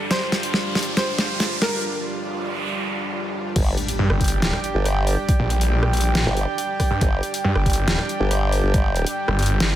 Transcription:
Already playing: supersaw synth G3 D4, riser
0.11 supersaw synth F4, grand piano C5, snare, closed hi-hat
0.32 snare, closed hi-hat
0.43 closed hi-hat
0.54 snare
0.75 snare, closed hi-hat
0.79 closed hi-hat
0.83 closed hi-hat
0.97 grand piano C5, snare, closed hi-hat
1.19 snare, closed hi-hat
1.40 snare, closed hi-hat
1.62 grand piano A#4, snare, closed hi-hat
1.83 noise sweep
3.56 wobble bass G1, supersaw synth G3 D4 G4, kick, closed hi-hat, crash, impact
3.77 closed hi-hat
3.88 brass ensemble G4 D5 G5, closed hi-hat
3.99 detuned saw bass G2
4.10 detuned saw bass G1, cross-stick
4.21 kick, closed hi-hat
4.24 closed hi-hat
4.28 closed hi-hat
4.42 snare, closed hi-hat
4.53 cross-stick
4.64 closed hi-hat
4.75 wobble bass G1
4.85 cross-stick, closed hi-hat
5.07 open hi-hat
5.29 kick, closed hi-hat
5.40 detuned saw bass A#1
5.50 closed hi-hat
5.61 brass ensemble G4 D5 G5, closed hi-hat
5.83 cross-stick
5.93 closed hi-hat
5.97 closed hi-hat
6.01 closed hi-hat
6.15 snare, closed hi-hat
6.26 wobble bass G1
6.37 closed hi-hat
6.58 closed hi-hat
6.80 kick, cross-stick, open hi-hat
6.91 detuned saw bass G2
7.01 wobble bass G1, kick, closed hi-hat
7.23 closed hi-hat
7.34 brass ensemble G4 D5 G5, closed hi-hat
7.44 detuned saw bass G2
7.55 detuned saw bass G1, cross-stick
7.66 kick, closed hi-hat
7.70 closed hi-hat
7.73 closed hi-hat
7.88 snare, closed hi-hat
7.99 cross-stick
8.09 closed hi-hat
8.20 wobble bass G1
8.31 cross-stick, closed hi-hat
8.52 open hi-hat
8.63 wobble bass G1
8.74 kick, closed hi-hat
8.96 closed hi-hat
9.06 brass ensemble G4 D5 G5, closed hi-hat
9.28 detuned saw bass G1, cross-stick
9.39 closed hi-hat
9.42 closed hi-hat
9.46 detuned saw bass G1, closed hi-hat
9.60 snare, closed hi-hat

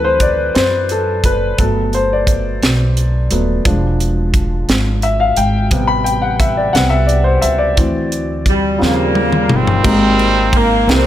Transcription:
Already playing: upright bass D2, grand piano E3 F#3 C4 A4 B4
0.04 grand piano C5
0.20 grand piano D5, kick, closed hi-hat
0.55 upright bass F#2, grand piano C5, snare, closed hi-hat
0.89 grand piano A4, closed hi-hat
1.24 upright bass F#1, grand piano B4, kick, closed hi-hat
1.58 upright bass G1, grand piano F#3 A3 B3 A4, kick, closed hi-hat
1.93 grand piano C5, closed hi-hat
2.13 grand piano D5
2.27 kick, closed hi-hat
2.63 upright bass B1, snare, closed hi-hat
2.97 closed hi-hat
3.30 upright bass D#1, grand piano F#3 A3 B3, closed hi-hat
3.65 upright bass E1, grand piano F3 G#3 D4, kick, closed hi-hat
4.00 closed hi-hat
4.34 kick, closed hi-hat
4.69 upright bass G#1, snare, closed hi-hat
5.02 grand piano E5, closed hi-hat
5.20 grand piano F5
5.37 upright bass G#1, grand piano G5, closed hi-hat
5.71 upright bass A1, grand piano C3 G3 B3, kick, closed hi-hat
5.88 grand piano B5
6.04 grand piano G5, closed hi-hat
6.22 grand piano F#5
6.40 grand piano E5, kick, closed hi-hat
6.57 grand piano D5
6.73 upright bass C2, grand piano C3 G3 B3 F#5, snare, closed hi-hat
6.90 grand piano E5
7.07 grand piano D5, closed hi-hat
7.24 grand piano C5
7.42 upright bass C#2, grand piano E5, closed hi-hat
7.58 grand piano D5
7.77 upright bass D2, grand piano E3 C4 F#4, kick, closed hi-hat
8.12 closed hi-hat
8.46 horn section G3, kick, closed hi-hat
8.78 upright bass D#2, grand piano C#3 F3 G3 C4, snare
8.83 horn section C#3 G3 A#3
9.15 high tom
9.32 mid tom
9.49 upright bass G1, horn section D#3 G3 C4, mid tom
9.67 floor tom
9.84 upright bass G#1, grand piano G#2 A#3 C4 D#4 G4 A#4, kick, crash
10.19 ride
10.53 horn section A#3, kick, ride
10.87 upright bass C2, grand piano C3 A#3 C4 E4 G4 A4, horn section E3 G3, snare, ride
10.91 horn section C4
10.96 grand piano A#4

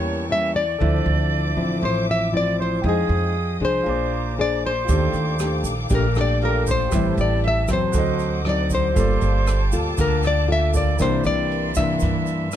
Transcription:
Already playing: upright bass E2, nylon-string guitar E3 G3 A#3 C#4 C#5, grand piano G4 A#4 C#5 E5, string section A#4 G5 A5 C#6, flute C#5
0.29 nylon-string guitar G3 A#3 C#4 E5, flute E5
0.55 flute D5, nylon-string guitar D5
0.78 upright bass D2, nylon-string guitar D3 F3 C4 E4, grand piano A4 C5, string section C5 E5 D6
0.83 grand piano E5
1.06 upright bass D2
1.57 upright bass A1, nylon-string guitar F3 C4 E4
1.82 upright bass A1, nylon-string guitar A2 C5, flute C5
2.09 flute E5, nylon-string guitar E5
2.33 nylon-string guitar F3 C4 E4, flute D5
2.37 nylon-string guitar D5
2.59 flute C5, nylon-string guitar C5
2.82 upright bass F2, nylon-string guitar F3 G#3 D#4, flute G#4, grand piano C5 G5, string section G5 D#6
2.88 nylon-string guitar G#4, grand piano D#5
3.09 upright bass F2
3.60 upright bass C2, nylon-string guitar D4 G#4 C5, flute C5
3.65 nylon-string guitar C5
3.83 upright bass A#1, nylon-string guitar A#3, grand piano F4 G#4 C5, string section C5 A#5 D6
3.89 grand piano D5
4.38 nylon-string guitar D4 G#4 C5 D5, flute D5
4.65 flute C5, nylon-string guitar C5
4.84 grand piano F4 G4, shaker
4.89 upright bass D#2, nylon-string guitar D#3 A3 D4 G4, grand piano A4 D5, string section A4 F5 G5, kick, closed hi-hat
5.13 upright bass D#2, closed hi-hat, shaker
5.39 nylon-string guitar A3 D4 G4, cross-stick, closed hi-hat, shaker
5.63 upright bass A#1, closed hi-hat, shaker
5.89 upright bass A#1, nylon-string guitar A#2 A3 D4 G4, flute A#4, kick, closed hi-hat, shaker
5.95 nylon-string guitar A#4
6.15 nylon-string guitar A3 D4 G4, flute D5, cross-stick, closed hi-hat, shaker
6.21 nylon-string guitar D5
6.41 grand piano F4 G4 A4 D5, flute A#4, nylon-string guitar A#4, closed hi-hat
6.67 flute C5, kick, closed hi-hat, shaker
6.71 nylon-string guitar C5
6.89 upright bass A1, nylon-string guitar A2 G3, grand piano G4 B4, string section E5 A5, kick, cross-stick, closed hi-hat, shaker
6.93 nylon-string guitar C4 E4, grand piano C5 E5
7.17 upright bass A1, flute D5, nylon-string guitar D5, closed hi-hat, shaker
7.43 flute E5, closed hi-hat
7.48 nylon-string guitar E5
7.68 upright bass E2, nylon-string guitar F#3 C4, flute C5, kick, cross-stick, closed hi-hat, shaker
7.73 nylon-string guitar C5
7.92 upright bass D2, nylon-string guitar D3, grand piano F#4 A4, string section C5 D#5 F#5 D6, kick, closed hi-hat, shaker
7.96 grand piano C5 D#5
8.19 closed hi-hat, shaker
8.45 nylon-string guitar F#3 C4 D#4, flute D5, cross-stick, closed hi-hat
8.49 nylon-string guitar D5
8.70 flute C5, kick, closed hi-hat, shaker
8.75 nylon-string guitar C5
8.93 upright bass G1, nylon-string guitar G3 A#3 F4 A4, grand piano F4 A4, kick, closed hi-hat, shaker
8.98 grand piano D5, string section F5 G5 A5 D6
9.21 upright bass G1, closed hi-hat, shaker
9.47 cross-stick, closed hi-hat, shaker
9.72 upright bass D2, nylon-string guitar A#3 F4 A4, closed hi-hat, shaker
9.97 upright bass D2, nylon-string guitar D3 A#4, flute A#4, kick, closed hi-hat, shaker
10.23 flute D5, cross-stick, closed hi-hat, shaker
10.27 nylon-string guitar D5
10.47 nylon-string guitar A#3 F4 A4, flute E5, closed hi-hat
10.52 nylon-string guitar E5
10.73 grand piano F4 A4 A#4 D5, flute D5, kick, closed hi-hat, shaker
10.77 nylon-string guitar D5
10.97 upright bass C2, nylon-string guitar C3 E3 A#3 D4, grand piano E4 G4 A#4, string section A#4 D5 E5 C6, flute C5, kick, cross-stick, closed hi-hat, shaker
11.02 nylon-string guitar C5, grand piano D5
11.24 upright bass C2, flute D5, nylon-string guitar D5, closed hi-hat, shaker
11.51 closed hi-hat
11.75 upright bass G2, nylon-string guitar E3 A#3 D4 E5, flute E5, kick, cross-stick, closed hi-hat, shaker
12.00 nylon-string guitar G2, upright bass G2, kick, closed hi-hat, shaker
12.26 closed hi-hat, shaker
12.51 cross-stick, closed hi-hat, shaker

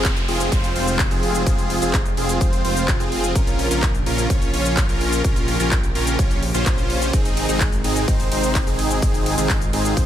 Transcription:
Already playing: detuned saw bass F1, analog synth pad C3 F3 G#3 F4, supersaw synth C4 F4 G#4, downlifter
0.05 kick, clap, closed hi-hat, shaker
0.17 closed hi-hat, shaker
0.28 detuned saw bass F1, supersaw synth C4 F4 G#4, open hi-hat
0.40 closed hi-hat, shaker
0.52 detuned saw bass F1, supersaw synth C4 F4 C5, kick, closed hi-hat, shaker
0.64 closed hi-hat, shaker
0.76 detuned saw bass F1, supersaw synth C4 F4 C5, open hi-hat
0.88 closed hi-hat, shaker
0.99 kick, clap, closed hi-hat, shaker
1.11 detuned saw bass F1, supersaw synth C4 F4 G#4, closed hi-hat, shaker
1.23 open hi-hat
1.35 closed hi-hat, shaker
1.47 detuned saw bass F1, supersaw synth C4 F4 G#4, kick, closed hi-hat, shaker
1.58 closed hi-hat, shaker
1.70 open hi-hat
1.82 detuned saw bass F1, supersaw synth C4 F4 G#4, closed hi-hat, shaker
1.94 kick, clap, closed hi-hat, shaker
2.06 closed hi-hat, shaker
2.17 detuned saw bass F1, supersaw synth C4 F4 G#4, open hi-hat
2.29 closed hi-hat, shaker
2.41 detuned saw bass F1, supersaw synth C4 F4 C5, kick, closed hi-hat, shaker
2.53 closed hi-hat, shaker
2.65 detuned saw bass F1, supersaw synth C4 F4 C5, open hi-hat
2.77 closed hi-hat, shaker
2.88 kick, clap, closed hi-hat, shaker
3.00 detuned saw bass F1, supersaw synth C4 F4 G#4, closed hi-hat, shaker
3.12 open hi-hat
3.24 closed hi-hat, shaker
3.35 detuned saw bass A#1, analog synth pad C#3 A#3, supersaw synth C#4 F4 A#4, kick, closed hi-hat, shaker
3.47 closed hi-hat, shaker
3.59 open hi-hat
3.71 detuned saw bass A#1, supersaw synth C#4 F4 A#4, closed hi-hat, shaker
3.83 kick, clap, closed hi-hat, shaker
3.95 closed hi-hat, shaker
4.06 detuned saw bass A#1, supersaw synth C#4 F4 A#4, open hi-hat
4.18 closed hi-hat, shaker
4.30 detuned saw bass A#1, supersaw synth C#4 F4 C#5, kick, closed hi-hat, shaker
4.42 closed hi-hat, shaker
4.53 detuned saw bass A#1, supersaw synth C#4 F4 C#5, open hi-hat
4.65 closed hi-hat, shaker
4.77 kick, clap, closed hi-hat, shaker
4.89 detuned saw bass A#1, supersaw synth C#4 F4 A#4, closed hi-hat, shaker
5.01 open hi-hat
5.13 closed hi-hat, shaker
5.24 detuned saw bass A#1, supersaw synth C#4 F4 A#4, analog synth pad G4, kick, closed hi-hat, shaker
5.36 closed hi-hat, shaker
5.48 open hi-hat
5.60 detuned saw bass A#1, supersaw synth C#4 F4 A#4, closed hi-hat, shaker
5.71 kick, clap, closed hi-hat, shaker
5.83 closed hi-hat, shaker
5.95 detuned saw bass A#1, supersaw synth C#4 F4 A#4, open hi-hat
6.07 closed hi-hat, shaker
6.19 detuned saw bass A#1, supersaw synth C#4 F4 C#5, kick, closed hi-hat, shaker
6.31 closed hi-hat, shaker
6.43 open hi-hat
6.54 detuned saw bass A#1, supersaw synth C#4 F4 C5, closed hi-hat, shaker
6.66 detuned saw bass A#1, supersaw synth C#4 F4 C5, kick, clap, closed hi-hat, shaker
6.78 closed hi-hat, shaker
6.90 open hi-hat
7.02 closed hi-hat, shaker
7.13 detuned saw bass G#1, analog synth pad C3 D#3 G#3 D#4, supersaw synth C4 D#4 G#4, kick, closed hi-hat, ride, shaker
7.25 closed hi-hat, shaker
7.37 open hi-hat, ride
7.49 detuned saw bass G#1, supersaw synth C4 D#4 G#4, closed hi-hat, shaker
7.61 kick, clap, closed hi-hat, ride, shaker
7.73 closed hi-hat, shaker
7.84 detuned saw bass G#1, supersaw synth C4 D#4 G#4, open hi-hat, ride
7.96 closed hi-hat, shaker
8.08 detuned saw bass G#1, supersaw synth C4 D#4 C5, kick, closed hi-hat, ride, shaker
8.20 closed hi-hat, shaker
8.32 detuned saw bass G#1, supersaw synth C4 D#4 C5, open hi-hat, ride
8.43 closed hi-hat, shaker
8.55 kick, clap, closed hi-hat, ride, shaker
8.67 detuned saw bass G#1, supersaw synth C4 D#4 G#4, closed hi-hat, shaker
8.79 open hi-hat, ride
8.91 closed hi-hat, shaker
9.02 detuned saw bass G#1, supersaw synth C4 D#4 G#4, analog synth pad F4, kick, closed hi-hat, ride, shaker
9.14 closed hi-hat, shaker
9.26 open hi-hat, ride
9.38 detuned saw bass G#1, supersaw synth C4 D#4 G#4, closed hi-hat, shaker
9.50 kick, clap, closed hi-hat, ride, shaker
9.62 closed hi-hat, shaker
9.73 detuned saw bass G#1, supersaw synth C4 D#4 G#4, open hi-hat, ride
9.85 closed hi-hat, shaker
9.97 detuned saw bass G#1, supersaw synth C4 D#4 C5, kick, closed hi-hat, ride, shaker

